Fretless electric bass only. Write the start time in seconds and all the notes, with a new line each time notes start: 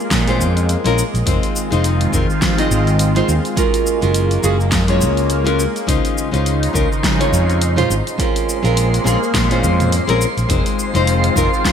0.11 A#2
0.39 F2
0.85 A#1
1.14 A#1
1.27 F1
1.72 F1
2.13 F1
2.71 G#1
3.29 D#2
4.03 F#1
4.44 F#1
4.72 F#2
5.02 C#2
5.88 C#2
6.34 C#2
6.75 C#2
7.32 F2
7.90 G#1
8.64 A#1
9.05 A#1
9.34 A#2
9.63 F2
10.09 A#1
10.37 A#1
10.49 F1
10.95 F1
11.36 F1